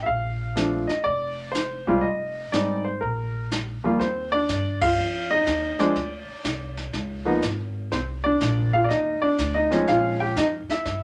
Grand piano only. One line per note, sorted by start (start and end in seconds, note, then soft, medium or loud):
0.03 0.07 E5 medium
0.03 0.85 F5 medium
0.56 0.85 F3 medium
0.56 0.86 A3 soft
0.56 0.86 C4 soft
0.56 0.86 D4 medium
0.87 1.05 D#5 medium
1.04 1.50 D5 medium
1.52 2.04 C5 medium
1.87 2.02 G3 medium
1.87 2.02 G#3 medium
1.87 2.03 C4 medium
1.87 2.03 F4 medium
2.01 2.48 D#5 medium
2.52 2.82 G3 medium
2.52 2.82 G#3 soft
2.52 2.82 C4 soft
2.52 2.83 D#4 medium
2.52 2.86 D5 medium
2.85 3.02 C5 medium
3.01 3.47 A#4 medium
3.84 3.98 D#2 medium
3.84 3.99 F3 medium
3.84 3.99 G3 medium
3.84 3.99 A#3 medium
3.84 3.99 F4 medium
3.99 4.31 C4 medium
3.99 4.30 C5 medium
4.32 4.79 D4 medium
4.32 4.78 D5 loud
4.82 5.28 F4 medium
4.82 5.27 F5 loud
5.31 5.77 D#4 medium
5.31 5.81 D#5 loud
5.79 5.94 F3 medium
5.79 5.94 G#3 medium
5.79 5.94 C4 medium
5.79 5.95 D4 medium
5.79 6.73 D5 medium
7.25 7.40 F3 medium
7.25 7.41 A#3 medium
7.25 7.41 B3 medium
7.25 7.41 D#4 medium
7.92 8.01 C4 medium
7.92 7.99 C5 medium
8.24 8.71 D4 medium
8.24 8.74 D5 medium
8.73 8.85 F4 medium
8.73 8.85 F5 medium
8.84 8.89 D5 medium
8.89 9.20 D#4 medium
8.89 9.23 D#5 medium
9.22 9.53 D4 medium
9.22 9.55 D5 medium
9.54 9.86 D#4 medium
9.54 9.85 D#5 medium
9.71 10.33 F3 medium
9.71 10.33 G#3 medium
9.71 10.33 C4 medium
9.71 10.33 C#4 medium
9.88 10.19 F4 medium
9.88 10.18 F5 medium
10.20 10.36 G4 medium
10.20 10.37 G5 medium
10.38 10.46 D#4 medium
10.38 10.45 D#5 medium
10.70 11.03 E4 medium
10.70 11.03 E5 medium